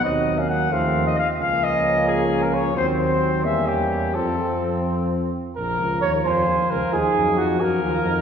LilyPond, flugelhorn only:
\new Staff \with { instrumentName = "Flugelhorn" } { \time 6/8 \key bes \minor \tempo 4. = 88 ees'8. des'8. c'4 r8 | des'2. | c'4. cis'4. | c'2~ c'8 r8 |
bes'4 des''8 c''4 bes'8 | aes'4 ges'8 bes'4. | }